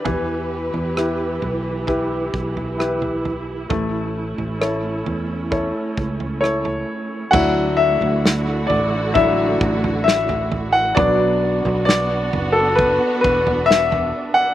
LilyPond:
<<
  \new Staff \with { instrumentName = "Grand piano" } { \time 4/4 \key d \major \tempo 4 = 66 << { r1 | r2. cis''4 | fis''8 e''4 d''8 e''4 e''8. fis''16 | d''4 d''8. a'16 b'8 b'8 e''8. fis''16 | } \\ { e4 <e' g' b'>4 <e' g' b'>4 <e' g' b'>4 | a4 <e' a' cis''>4 <e' a' cis''>4 <e' a'>4 | <fis d' e'>8 r4. <fis d' e'>8 r4. | <fis b d'>1 | } >> }
  \new Staff \with { instrumentName = "String section" } { \time 4/4 \key d \major <e e' g' b'>1 | <a cis'>1 | <d a e' fis'>1 | <b d' fis'>1 | }
  \new Staff \with { instrumentName = "Fingered electric bass" } { \clef bass \time 4/4 \key d \major e,8. e,8. b,,4 b,,4. | a,,8. a,,8. e,8. r16 cis,4 r8 | d,8. d,8. a,,4 a,,4. | b,,8. b,,8. fis,,8. r16 e,,4 r8 | }
  \new DrumStaff \with { instrumentName = "Drums" } \drummode { \time 4/4 <bd tomfh>8. tomfh16 ss8 tomfh8 <bd tomfh>8 bd16 tomfh16 ss16 tomfh16 tomfh8 | <bd tomfh>8. tomfh16 ss8 tomfh8 <bd tomfh>8 bd16 tomfh16 ss16 tomfh8. | <cymc bd tomfh>8. tomfh16 sn8 tomfh8 <bd tomfh>8 bd16 tomfh16 sn16 tomfh16 tomfh8 | <bd tomfh>8. tomfh16 sn8 tomfh8 <bd tomfh>8 bd16 tomfh16 sn16 tomfh8. | }
>>